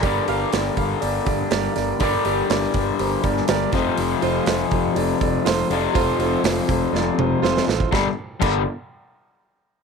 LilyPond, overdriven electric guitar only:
\new Staff \with { instrumentName = "Overdriven electric guitar" } { \clef bass \time 4/4 \key g \minor \tempo 4 = 122 <g, d g>1 | <g, d g>2.~ <g, d g>8 <f, c f>8~ | <f, c f>2.~ <f, c f>8 <f, c f>8~ | <f, c f>2.~ <f, c f>8 r8 |
<g, d g>8 r8 <g, d g>8 r2 r8 | }